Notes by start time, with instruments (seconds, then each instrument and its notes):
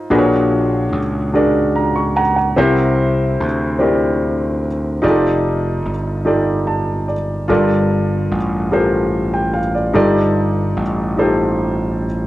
Already playing: grand piano D#4 F4 A4 C5 D#5
0.10 slap bass A#1, grand piano A#2 D4 F#4 G#4 A#4 B4
0.18 grand piano C#5
0.92 slap bass C#2
1.33 grand piano D4 F#4 G#4 A#4 D5
1.76 grand piano A#5
1.96 grand piano C#6
2.16 grand piano F#5 A#5
2.36 grand piano F#5
2.56 slap bass C2, grand piano C3 C4 E4 G4 A#4 C5
3.40 slap bass D2
3.79 grand piano C4 E4 G4 A#4 D5
5.02 slap bass F1, grand piano D#4 F4 G4 G#4 D5
5.10 grand piano A4
5.85 slap bass G1
6.25 grand piano D#4 F4 G4 A4 D5
6.67 grand piano A5
7.08 grand piano D5
7.48 slap bass G1, grand piano G2 F4 G4 A4 A#4 D5
8.31 slap bass A1
8.71 grand piano F4 G4 A4 A#4 C5
9.34 grand piano G5
9.54 grand piano F5
9.75 grand piano D5
9.93 slap bass G1, grand piano G2 D#4 F4 G4 A4 D5
10.77 slap bass A1
11.17 grand piano D#4 F4 G4 A4 C5